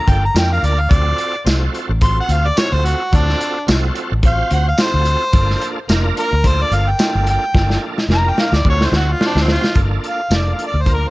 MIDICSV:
0, 0, Header, 1, 5, 480
1, 0, Start_track
1, 0, Key_signature, -2, "minor"
1, 0, Tempo, 553506
1, 787, Time_signature, 4, 2, 24, 8
1, 9626, End_track
2, 0, Start_track
2, 0, Title_t, "Harmonica"
2, 0, Program_c, 0, 22
2, 0, Note_on_c, 0, 82, 96
2, 82, Note_on_c, 0, 79, 88
2, 95, Note_off_c, 0, 82, 0
2, 198, Note_off_c, 0, 79, 0
2, 220, Note_on_c, 0, 82, 85
2, 309, Note_off_c, 0, 82, 0
2, 330, Note_on_c, 0, 79, 87
2, 443, Note_off_c, 0, 79, 0
2, 456, Note_on_c, 0, 77, 97
2, 564, Note_on_c, 0, 74, 87
2, 577, Note_off_c, 0, 77, 0
2, 694, Note_on_c, 0, 77, 89
2, 707, Note_off_c, 0, 74, 0
2, 787, Note_on_c, 0, 74, 105
2, 800, Note_off_c, 0, 77, 0
2, 1254, Note_off_c, 0, 74, 0
2, 1762, Note_on_c, 0, 84, 116
2, 1881, Note_off_c, 0, 84, 0
2, 1912, Note_on_c, 0, 78, 91
2, 2016, Note_on_c, 0, 77, 102
2, 2029, Note_off_c, 0, 78, 0
2, 2143, Note_on_c, 0, 74, 97
2, 2156, Note_off_c, 0, 77, 0
2, 2239, Note_on_c, 0, 73, 93
2, 2252, Note_off_c, 0, 74, 0
2, 2371, Note_on_c, 0, 72, 85
2, 2384, Note_off_c, 0, 73, 0
2, 2474, Note_on_c, 0, 66, 90
2, 2487, Note_off_c, 0, 72, 0
2, 2731, Note_on_c, 0, 62, 115
2, 2744, Note_off_c, 0, 66, 0
2, 3187, Note_off_c, 0, 62, 0
2, 3701, Note_on_c, 0, 77, 102
2, 3919, Note_off_c, 0, 77, 0
2, 3931, Note_on_c, 0, 78, 83
2, 4046, Note_off_c, 0, 78, 0
2, 4062, Note_on_c, 0, 77, 95
2, 4178, Note_on_c, 0, 72, 120
2, 4191, Note_off_c, 0, 77, 0
2, 5095, Note_off_c, 0, 72, 0
2, 5371, Note_on_c, 0, 70, 99
2, 5610, Note_on_c, 0, 72, 96
2, 5623, Note_off_c, 0, 70, 0
2, 5743, Note_on_c, 0, 74, 102
2, 5756, Note_off_c, 0, 72, 0
2, 5844, Note_on_c, 0, 77, 90
2, 5857, Note_off_c, 0, 74, 0
2, 5981, Note_on_c, 0, 79, 93
2, 5994, Note_off_c, 0, 77, 0
2, 6307, Note_off_c, 0, 79, 0
2, 6330, Note_on_c, 0, 79, 108
2, 6784, Note_off_c, 0, 79, 0
2, 7054, Note_on_c, 0, 82, 107
2, 7196, Note_on_c, 0, 79, 95
2, 7209, Note_off_c, 0, 82, 0
2, 7289, Note_on_c, 0, 77, 100
2, 7302, Note_off_c, 0, 79, 0
2, 7418, Note_on_c, 0, 74, 91
2, 7431, Note_off_c, 0, 77, 0
2, 7509, Note_off_c, 0, 74, 0
2, 7540, Note_on_c, 0, 73, 107
2, 7677, Note_on_c, 0, 72, 86
2, 7690, Note_off_c, 0, 73, 0
2, 7759, Note_off_c, 0, 72, 0
2, 7770, Note_on_c, 0, 66, 89
2, 7912, Note_on_c, 0, 65, 85
2, 7925, Note_off_c, 0, 66, 0
2, 7997, Note_off_c, 0, 65, 0
2, 8030, Note_on_c, 0, 62, 103
2, 8166, Note_on_c, 0, 60, 98
2, 8179, Note_off_c, 0, 62, 0
2, 8262, Note_on_c, 0, 65, 112
2, 8275, Note_off_c, 0, 60, 0
2, 8478, Note_off_c, 0, 65, 0
2, 8752, Note_on_c, 0, 77, 90
2, 8987, Note_on_c, 0, 74, 72
2, 9000, Note_off_c, 0, 77, 0
2, 9138, Note_on_c, 0, 77, 67
2, 9151, Note_off_c, 0, 74, 0
2, 9211, Note_off_c, 0, 77, 0
2, 9248, Note_on_c, 0, 74, 76
2, 9380, Note_on_c, 0, 72, 83
2, 9393, Note_off_c, 0, 74, 0
2, 9489, Note_on_c, 0, 70, 82
2, 9502, Note_off_c, 0, 72, 0
2, 9620, Note_off_c, 0, 70, 0
2, 9626, End_track
3, 0, Start_track
3, 0, Title_t, "Tonewheel organ"
3, 0, Program_c, 1, 16
3, 0, Note_on_c, 1, 58, 80
3, 0, Note_on_c, 1, 62, 68
3, 0, Note_on_c, 1, 65, 69
3, 0, Note_on_c, 1, 69, 86
3, 218, Note_off_c, 1, 58, 0
3, 223, Note_off_c, 1, 62, 0
3, 225, Note_off_c, 1, 65, 0
3, 228, Note_off_c, 1, 69, 0
3, 294, Note_on_c, 1, 58, 73
3, 300, Note_on_c, 1, 62, 65
3, 301, Note_on_c, 1, 65, 67
3, 311, Note_on_c, 1, 70, 88
3, 698, Note_off_c, 1, 58, 0
3, 701, Note_off_c, 1, 62, 0
3, 702, Note_off_c, 1, 65, 0
3, 707, Note_off_c, 1, 70, 0
3, 772, Note_on_c, 1, 60, 83
3, 778, Note_on_c, 1, 65, 79
3, 784, Note_on_c, 1, 66, 73
3, 789, Note_on_c, 1, 69, 96
3, 1178, Note_off_c, 1, 60, 0
3, 1181, Note_off_c, 1, 65, 0
3, 1184, Note_off_c, 1, 66, 0
3, 1187, Note_off_c, 1, 69, 0
3, 1256, Note_on_c, 1, 60, 87
3, 1263, Note_on_c, 1, 65, 74
3, 1273, Note_on_c, 1, 66, 79
3, 1275, Note_on_c, 1, 69, 88
3, 1660, Note_off_c, 1, 60, 0
3, 1664, Note_off_c, 1, 65, 0
3, 1669, Note_off_c, 1, 66, 0
3, 1670, Note_off_c, 1, 69, 0
3, 1747, Note_on_c, 1, 60, 85
3, 1754, Note_on_c, 1, 65, 80
3, 1757, Note_on_c, 1, 66, 73
3, 1765, Note_on_c, 1, 69, 79
3, 2146, Note_off_c, 1, 60, 0
3, 2149, Note_off_c, 1, 65, 0
3, 2151, Note_off_c, 1, 66, 0
3, 2155, Note_off_c, 1, 69, 0
3, 2218, Note_on_c, 1, 60, 74
3, 2227, Note_on_c, 1, 65, 66
3, 2231, Note_on_c, 1, 66, 72
3, 2234, Note_on_c, 1, 69, 83
3, 2622, Note_off_c, 1, 60, 0
3, 2626, Note_off_c, 1, 65, 0
3, 2628, Note_off_c, 1, 66, 0
3, 2630, Note_off_c, 1, 69, 0
3, 2712, Note_on_c, 1, 65, 72
3, 2714, Note_on_c, 1, 60, 80
3, 2719, Note_on_c, 1, 66, 73
3, 2728, Note_on_c, 1, 69, 91
3, 3109, Note_off_c, 1, 65, 0
3, 3110, Note_off_c, 1, 60, 0
3, 3112, Note_off_c, 1, 66, 0
3, 3117, Note_off_c, 1, 69, 0
3, 3181, Note_on_c, 1, 60, 80
3, 3183, Note_on_c, 1, 65, 74
3, 3191, Note_on_c, 1, 66, 74
3, 3197, Note_on_c, 1, 69, 96
3, 3583, Note_off_c, 1, 60, 0
3, 3584, Note_off_c, 1, 65, 0
3, 3588, Note_off_c, 1, 66, 0
3, 3592, Note_off_c, 1, 69, 0
3, 3667, Note_on_c, 1, 60, 85
3, 3674, Note_on_c, 1, 65, 74
3, 3680, Note_on_c, 1, 66, 70
3, 3687, Note_on_c, 1, 72, 94
3, 4066, Note_off_c, 1, 60, 0
3, 4070, Note_off_c, 1, 65, 0
3, 4073, Note_off_c, 1, 66, 0
3, 4076, Note_off_c, 1, 72, 0
3, 4143, Note_on_c, 1, 60, 78
3, 4151, Note_on_c, 1, 65, 73
3, 4154, Note_on_c, 1, 66, 65
3, 4160, Note_on_c, 1, 69, 91
3, 4544, Note_off_c, 1, 60, 0
3, 4548, Note_off_c, 1, 65, 0
3, 4550, Note_off_c, 1, 66, 0
3, 4552, Note_off_c, 1, 69, 0
3, 4617, Note_on_c, 1, 58, 86
3, 4624, Note_on_c, 1, 62, 83
3, 4632, Note_on_c, 1, 65, 78
3, 4636, Note_on_c, 1, 69, 95
3, 5021, Note_off_c, 1, 58, 0
3, 5024, Note_off_c, 1, 62, 0
3, 5029, Note_off_c, 1, 65, 0
3, 5031, Note_off_c, 1, 69, 0
3, 5099, Note_on_c, 1, 58, 99
3, 5109, Note_on_c, 1, 62, 90
3, 5111, Note_on_c, 1, 65, 85
3, 5117, Note_on_c, 1, 70, 118
3, 5502, Note_off_c, 1, 58, 0
3, 5507, Note_off_c, 1, 62, 0
3, 5508, Note_off_c, 1, 65, 0
3, 5511, Note_off_c, 1, 70, 0
3, 5583, Note_on_c, 1, 58, 88
3, 5587, Note_on_c, 1, 62, 76
3, 5588, Note_on_c, 1, 65, 84
3, 5599, Note_on_c, 1, 69, 86
3, 5983, Note_off_c, 1, 58, 0
3, 5985, Note_off_c, 1, 62, 0
3, 5986, Note_off_c, 1, 65, 0
3, 5991, Note_off_c, 1, 69, 0
3, 6056, Note_on_c, 1, 58, 83
3, 6063, Note_on_c, 1, 62, 67
3, 6069, Note_on_c, 1, 65, 72
3, 6072, Note_on_c, 1, 69, 85
3, 6459, Note_off_c, 1, 58, 0
3, 6463, Note_off_c, 1, 62, 0
3, 6466, Note_off_c, 1, 65, 0
3, 6468, Note_off_c, 1, 69, 0
3, 6540, Note_on_c, 1, 58, 78
3, 6546, Note_on_c, 1, 62, 74
3, 6552, Note_on_c, 1, 65, 79
3, 6558, Note_on_c, 1, 69, 83
3, 6941, Note_off_c, 1, 58, 0
3, 6944, Note_off_c, 1, 62, 0
3, 6947, Note_off_c, 1, 65, 0
3, 6950, Note_off_c, 1, 69, 0
3, 7022, Note_on_c, 1, 58, 91
3, 7024, Note_on_c, 1, 62, 72
3, 7030, Note_on_c, 1, 65, 80
3, 7034, Note_on_c, 1, 70, 91
3, 7422, Note_off_c, 1, 58, 0
3, 7423, Note_off_c, 1, 62, 0
3, 7426, Note_off_c, 1, 65, 0
3, 7428, Note_off_c, 1, 70, 0
3, 7501, Note_on_c, 1, 60, 83
3, 7504, Note_on_c, 1, 65, 78
3, 7512, Note_on_c, 1, 66, 70
3, 7515, Note_on_c, 1, 69, 95
3, 7902, Note_off_c, 1, 60, 0
3, 7903, Note_off_c, 1, 65, 0
3, 7907, Note_off_c, 1, 66, 0
3, 7909, Note_off_c, 1, 69, 0
3, 7973, Note_on_c, 1, 60, 78
3, 7975, Note_on_c, 1, 65, 73
3, 7984, Note_on_c, 1, 66, 76
3, 7993, Note_on_c, 1, 72, 94
3, 8378, Note_off_c, 1, 60, 0
3, 8379, Note_off_c, 1, 65, 0
3, 8383, Note_off_c, 1, 66, 0
3, 8388, Note_off_c, 1, 72, 0
3, 8447, Note_on_c, 1, 58, 62
3, 8455, Note_on_c, 1, 62, 63
3, 8461, Note_on_c, 1, 65, 70
3, 8466, Note_on_c, 1, 69, 85
3, 8855, Note_off_c, 1, 58, 0
3, 8859, Note_off_c, 1, 62, 0
3, 8862, Note_off_c, 1, 65, 0
3, 8864, Note_off_c, 1, 69, 0
3, 8927, Note_on_c, 1, 58, 78
3, 8933, Note_on_c, 1, 62, 70
3, 8937, Note_on_c, 1, 65, 73
3, 8943, Note_on_c, 1, 69, 74
3, 9335, Note_off_c, 1, 58, 0
3, 9338, Note_off_c, 1, 62, 0
3, 9340, Note_off_c, 1, 65, 0
3, 9343, Note_off_c, 1, 69, 0
3, 9410, Note_on_c, 1, 58, 71
3, 9413, Note_on_c, 1, 62, 63
3, 9420, Note_on_c, 1, 65, 67
3, 9424, Note_on_c, 1, 70, 77
3, 9626, Note_off_c, 1, 58, 0
3, 9626, Note_off_c, 1, 62, 0
3, 9626, Note_off_c, 1, 65, 0
3, 9626, Note_off_c, 1, 70, 0
3, 9626, End_track
4, 0, Start_track
4, 0, Title_t, "Fingered electric bass"
4, 0, Program_c, 2, 33
4, 66, Note_on_c, 2, 31, 98
4, 246, Note_off_c, 2, 31, 0
4, 299, Note_on_c, 2, 41, 88
4, 518, Note_off_c, 2, 41, 0
4, 544, Note_on_c, 2, 38, 73
4, 761, Note_off_c, 2, 38, 0
4, 788, Note_on_c, 2, 38, 86
4, 968, Note_off_c, 2, 38, 0
4, 1266, Note_on_c, 2, 36, 97
4, 1447, Note_off_c, 2, 36, 0
4, 1640, Note_on_c, 2, 33, 102
4, 1901, Note_off_c, 2, 33, 0
4, 1984, Note_on_c, 2, 38, 111
4, 2166, Note_off_c, 2, 38, 0
4, 2362, Note_on_c, 2, 38, 84
4, 2543, Note_off_c, 2, 38, 0
4, 2710, Note_on_c, 2, 38, 110
4, 2890, Note_off_c, 2, 38, 0
4, 3195, Note_on_c, 2, 36, 104
4, 3374, Note_off_c, 2, 36, 0
4, 3572, Note_on_c, 2, 33, 101
4, 3829, Note_off_c, 2, 33, 0
4, 3914, Note_on_c, 2, 38, 109
4, 4093, Note_off_c, 2, 38, 0
4, 4282, Note_on_c, 2, 38, 99
4, 4463, Note_off_c, 2, 38, 0
4, 4626, Note_on_c, 2, 31, 112
4, 4807, Note_off_c, 2, 31, 0
4, 5109, Note_on_c, 2, 29, 104
4, 5289, Note_off_c, 2, 29, 0
4, 5487, Note_on_c, 2, 38, 107
4, 5745, Note_off_c, 2, 38, 0
4, 5821, Note_on_c, 2, 31, 106
4, 6004, Note_off_c, 2, 31, 0
4, 6200, Note_on_c, 2, 31, 99
4, 6381, Note_off_c, 2, 31, 0
4, 6543, Note_on_c, 2, 31, 109
4, 6725, Note_off_c, 2, 31, 0
4, 7010, Note_on_c, 2, 29, 106
4, 7197, Note_off_c, 2, 29, 0
4, 7390, Note_on_c, 2, 38, 96
4, 7474, Note_off_c, 2, 38, 0
4, 7498, Note_on_c, 2, 38, 113
4, 7682, Note_off_c, 2, 38, 0
4, 7734, Note_on_c, 2, 38, 113
4, 7919, Note_off_c, 2, 38, 0
4, 8110, Note_on_c, 2, 38, 106
4, 8294, Note_off_c, 2, 38, 0
4, 8462, Note_on_c, 2, 31, 92
4, 8644, Note_off_c, 2, 31, 0
4, 8935, Note_on_c, 2, 29, 94
4, 9120, Note_off_c, 2, 29, 0
4, 9311, Note_on_c, 2, 38, 87
4, 9575, Note_off_c, 2, 38, 0
4, 9626, End_track
5, 0, Start_track
5, 0, Title_t, "Drums"
5, 66, Note_on_c, 9, 36, 81
5, 70, Note_on_c, 9, 42, 67
5, 153, Note_off_c, 9, 36, 0
5, 156, Note_off_c, 9, 42, 0
5, 310, Note_on_c, 9, 42, 96
5, 310, Note_on_c, 9, 54, 118
5, 317, Note_on_c, 9, 38, 125
5, 397, Note_off_c, 9, 42, 0
5, 397, Note_off_c, 9, 54, 0
5, 404, Note_off_c, 9, 38, 0
5, 553, Note_on_c, 9, 42, 57
5, 640, Note_off_c, 9, 42, 0
5, 787, Note_on_c, 9, 42, 88
5, 788, Note_on_c, 9, 36, 117
5, 874, Note_off_c, 9, 36, 0
5, 874, Note_off_c, 9, 42, 0
5, 1026, Note_on_c, 9, 42, 61
5, 1113, Note_off_c, 9, 42, 0
5, 1270, Note_on_c, 9, 42, 88
5, 1270, Note_on_c, 9, 54, 106
5, 1277, Note_on_c, 9, 38, 98
5, 1357, Note_off_c, 9, 42, 0
5, 1357, Note_off_c, 9, 54, 0
5, 1364, Note_off_c, 9, 38, 0
5, 1513, Note_on_c, 9, 42, 58
5, 1600, Note_off_c, 9, 42, 0
5, 1744, Note_on_c, 9, 42, 94
5, 1748, Note_on_c, 9, 36, 88
5, 1830, Note_off_c, 9, 42, 0
5, 1835, Note_off_c, 9, 36, 0
5, 1987, Note_on_c, 9, 42, 64
5, 2073, Note_off_c, 9, 42, 0
5, 2229, Note_on_c, 9, 42, 101
5, 2229, Note_on_c, 9, 54, 127
5, 2236, Note_on_c, 9, 38, 127
5, 2316, Note_off_c, 9, 42, 0
5, 2316, Note_off_c, 9, 54, 0
5, 2323, Note_off_c, 9, 38, 0
5, 2477, Note_on_c, 9, 42, 69
5, 2563, Note_off_c, 9, 42, 0
5, 2713, Note_on_c, 9, 36, 119
5, 2713, Note_on_c, 9, 42, 83
5, 2799, Note_off_c, 9, 36, 0
5, 2800, Note_off_c, 9, 42, 0
5, 2853, Note_on_c, 9, 38, 36
5, 2940, Note_off_c, 9, 38, 0
5, 2954, Note_on_c, 9, 42, 65
5, 3040, Note_off_c, 9, 42, 0
5, 3193, Note_on_c, 9, 42, 96
5, 3193, Note_on_c, 9, 54, 98
5, 3200, Note_on_c, 9, 38, 119
5, 3279, Note_off_c, 9, 42, 0
5, 3279, Note_off_c, 9, 54, 0
5, 3286, Note_off_c, 9, 38, 0
5, 3430, Note_on_c, 9, 42, 70
5, 3517, Note_off_c, 9, 42, 0
5, 3668, Note_on_c, 9, 42, 89
5, 3669, Note_on_c, 9, 36, 101
5, 3755, Note_off_c, 9, 42, 0
5, 3756, Note_off_c, 9, 36, 0
5, 3908, Note_on_c, 9, 42, 71
5, 3995, Note_off_c, 9, 42, 0
5, 4143, Note_on_c, 9, 42, 97
5, 4143, Note_on_c, 9, 54, 127
5, 4150, Note_on_c, 9, 38, 127
5, 4229, Note_off_c, 9, 42, 0
5, 4229, Note_off_c, 9, 54, 0
5, 4236, Note_off_c, 9, 38, 0
5, 4383, Note_on_c, 9, 42, 69
5, 4470, Note_off_c, 9, 42, 0
5, 4623, Note_on_c, 9, 42, 89
5, 4626, Note_on_c, 9, 36, 118
5, 4709, Note_off_c, 9, 42, 0
5, 4713, Note_off_c, 9, 36, 0
5, 4770, Note_on_c, 9, 38, 36
5, 4857, Note_off_c, 9, 38, 0
5, 4869, Note_on_c, 9, 42, 70
5, 4956, Note_off_c, 9, 42, 0
5, 5108, Note_on_c, 9, 42, 92
5, 5108, Note_on_c, 9, 54, 112
5, 5115, Note_on_c, 9, 38, 119
5, 5195, Note_off_c, 9, 42, 0
5, 5195, Note_off_c, 9, 54, 0
5, 5202, Note_off_c, 9, 38, 0
5, 5352, Note_on_c, 9, 42, 64
5, 5439, Note_off_c, 9, 42, 0
5, 5586, Note_on_c, 9, 36, 103
5, 5586, Note_on_c, 9, 42, 93
5, 5673, Note_off_c, 9, 36, 0
5, 5673, Note_off_c, 9, 42, 0
5, 5826, Note_on_c, 9, 42, 59
5, 5913, Note_off_c, 9, 42, 0
5, 6062, Note_on_c, 9, 42, 88
5, 6062, Note_on_c, 9, 54, 127
5, 6069, Note_on_c, 9, 38, 127
5, 6149, Note_off_c, 9, 42, 0
5, 6149, Note_off_c, 9, 54, 0
5, 6156, Note_off_c, 9, 38, 0
5, 6302, Note_on_c, 9, 42, 72
5, 6389, Note_off_c, 9, 42, 0
5, 6543, Note_on_c, 9, 36, 113
5, 6550, Note_on_c, 9, 38, 79
5, 6630, Note_off_c, 9, 36, 0
5, 6637, Note_off_c, 9, 38, 0
5, 6679, Note_on_c, 9, 38, 62
5, 6765, Note_off_c, 9, 38, 0
5, 6920, Note_on_c, 9, 38, 63
5, 7007, Note_off_c, 9, 38, 0
5, 7024, Note_on_c, 9, 38, 76
5, 7111, Note_off_c, 9, 38, 0
5, 7266, Note_on_c, 9, 38, 86
5, 7353, Note_off_c, 9, 38, 0
5, 7396, Note_on_c, 9, 38, 90
5, 7483, Note_off_c, 9, 38, 0
5, 7500, Note_on_c, 9, 36, 99
5, 7587, Note_off_c, 9, 36, 0
5, 7639, Note_on_c, 9, 38, 78
5, 7726, Note_off_c, 9, 38, 0
5, 7743, Note_on_c, 9, 38, 95
5, 7830, Note_off_c, 9, 38, 0
5, 7986, Note_on_c, 9, 38, 111
5, 8073, Note_off_c, 9, 38, 0
5, 8123, Note_on_c, 9, 38, 96
5, 8210, Note_off_c, 9, 38, 0
5, 8223, Note_on_c, 9, 38, 107
5, 8310, Note_off_c, 9, 38, 0
5, 8361, Note_on_c, 9, 38, 99
5, 8447, Note_off_c, 9, 38, 0
5, 8458, Note_on_c, 9, 42, 77
5, 8461, Note_on_c, 9, 36, 104
5, 8545, Note_off_c, 9, 42, 0
5, 8548, Note_off_c, 9, 36, 0
5, 8705, Note_on_c, 9, 42, 55
5, 8792, Note_off_c, 9, 42, 0
5, 8939, Note_on_c, 9, 42, 69
5, 8939, Note_on_c, 9, 54, 99
5, 8946, Note_on_c, 9, 38, 99
5, 9026, Note_off_c, 9, 42, 0
5, 9026, Note_off_c, 9, 54, 0
5, 9033, Note_off_c, 9, 38, 0
5, 9183, Note_on_c, 9, 42, 56
5, 9269, Note_off_c, 9, 42, 0
5, 9419, Note_on_c, 9, 42, 77
5, 9421, Note_on_c, 9, 36, 86
5, 9506, Note_off_c, 9, 42, 0
5, 9508, Note_off_c, 9, 36, 0
5, 9626, End_track
0, 0, End_of_file